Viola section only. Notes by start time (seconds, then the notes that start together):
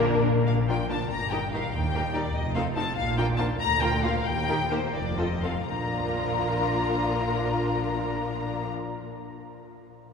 Already playing: A#3
0.69 F3 D4
0.90 F3 D4
1.32 D#3 D#4
1.53 D#3 D#4
1.95 G3 D#4
2.15 G3 D#4
2.56 C4 D#4
2.76 C4 D#4
3.18 A#3 D4
3.39 A#3 D4
3.81 A#3 F4
4.03 A#3 F4
4.48 A#3 D#4
4.71 A#3 D#4
5.18 F3 C4
5.44 F3 C4
5.68 F3 D4